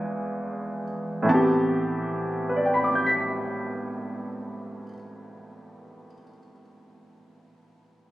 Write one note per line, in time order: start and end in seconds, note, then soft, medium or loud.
0.00 1.26 E2 soft
0.00 1.24 E3 soft
0.00 1.27 G#3 soft
0.00 1.27 D4 soft
0.00 1.28 F4 soft
0.00 0.83 G#5 medium
1.22 4.82 A2 medium
1.22 4.85 E3 soft
1.29 4.88 B3 soft
1.29 4.92 C4 soft
1.29 4.85 A5 medium
1.34 4.94 G4 medium
2.49 6.05 B4 soft
2.56 6.12 D5 soft
2.65 6.21 G5 soft
2.74 6.30 B5 soft
2.84 6.40 D6 soft
2.95 6.51 G6 soft
3.06 6.62 B6 soft